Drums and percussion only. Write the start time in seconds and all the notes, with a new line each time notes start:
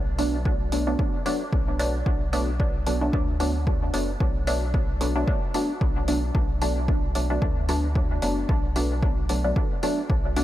0.19 open hi-hat
0.45 kick
0.72 open hi-hat
0.99 kick
1.26 open hi-hat
1.53 kick
1.79 open hi-hat
2.06 kick
2.33 open hi-hat
2.60 kick
2.87 open hi-hat
3.13 kick
3.40 open hi-hat
3.67 kick
3.94 open hi-hat
4.20 kick
4.47 open hi-hat
4.74 kick
5.01 open hi-hat
5.28 kick
5.54 open hi-hat
5.81 kick
6.08 open hi-hat
6.35 kick
6.62 open hi-hat
6.88 kick
7.15 open hi-hat
7.42 kick
7.69 open hi-hat
7.95 kick
8.22 open hi-hat
8.49 kick
8.76 open hi-hat
9.03 kick
9.29 open hi-hat
9.56 kick
9.83 open hi-hat
10.10 kick
10.36 open hi-hat